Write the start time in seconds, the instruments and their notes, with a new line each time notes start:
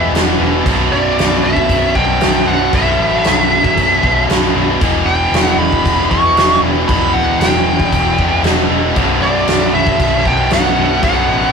Already playing: distorted electric guitar E2 B2 E3
0.12 picked electric bass E1, distorted electric guitar E2 B2, snare, crash
0.17 distorted electric guitar E3
0.38 picked electric bass E1, distorted electric guitar E2 B2 E3
0.64 picked electric bass B0, distorted electric guitar B1 F#2 B2, kick, crash
0.69 distorted electric guitar B2
0.92 picked electric bass B0, lead electric guitar D5
1.18 picked electric bass B0, snare, crash
1.43 picked electric bass B0, lead electric guitar E5
1.56 kick
1.69 picked electric bass B0, kick, crash
1.95 picked electric bass B1, distorted electric guitar B1 F#2 B2, lead electric guitar G5, kick
2.20 picked electric bass B0, distorted electric guitar B1 F#2 B2, snare, crash
2.46 picked electric bass B0, distorted electric guitar B1 F#2 B2, lead electric guitar F#5
2.72 picked electric bass B0, distorted electric guitar B1 F#2 B2, lead electric guitar E5, kick, crash
2.76 distorted electric guitar B2
2.99 picked electric bass A1
3.24 picked electric bass B0, snare, crash
3.64 kick
3.77 picked electric bass B0, kick, crash
4.02 picked electric bass B1, distorted electric guitar B1 F#2 B2, kick
4.27 picked electric bass B0, distorted electric guitar B1 F#2 B2, snare, crash
4.54 picked electric bass B0, distorted electric guitar B1 F#2 B2
4.80 picked electric bass E1, distorted electric guitar E2 B2 E3, kick, crash
5.06 picked electric bass E1, lead electric guitar G5
5.30 picked electric bass E1, crash
5.35 snare
5.45 lead electric guitar F#5
5.56 picked electric bass E1, lead electric guitar B5
5.72 kick
5.86 picked electric bass E1, kick, crash
6.10 picked electric bass E2, distorted electric guitar E2 B2 E3, lead electric guitar C#6, kick
6.35 picked electric bass E1, distorted electric guitar E2 B2, snare, crash
6.40 distorted electric guitar E3
6.61 picked electric bass E1, distorted electric guitar E2 B2 E3
6.86 picked electric bass E1, distorted electric guitar E2 B2 E3, lead electric guitar B5, kick, crash
6.91 distorted electric guitar E3
7.14 picked electric bass D1, lead electric guitar F#5
7.39 picked electric bass E1, lead electric guitar G5, snare, crash
7.80 kick
7.92 picked electric bass E1, kick, crash
8.18 picked electric bass E2, distorted electric guitar E2 B2 E3, kick
8.43 picked electric bass E1, distorted electric guitar E2 B2 E3, snare, crash
8.69 picked electric bass E1, distorted electric guitar E2 B2 E3
8.96 picked electric bass B0, distorted electric guitar B1 F#2 B2, kick, crash
9.21 picked electric bass B0, lead electric guitar D5
9.47 picked electric bass B0, snare, crash
9.73 picked electric bass B0, lead electric guitar E5
9.87 kick
9.99 picked electric bass B0, kick, crash
10.24 picked electric bass B1, distorted electric guitar F#2 B2, lead electric guitar G5, kick
10.28 distorted electric guitar B1
10.51 picked electric bass B0, distorted electric guitar B1 F#2, lead electric guitar F#5, snare, crash
10.55 distorted electric guitar B2
10.77 picked electric bass B0, distorted electric guitar F#2 B2
10.81 distorted electric guitar B1
11.02 picked electric bass B0, distorted electric guitar B1 F#2 B2, lead electric guitar F#5, kick, crash
11.29 picked electric bass A1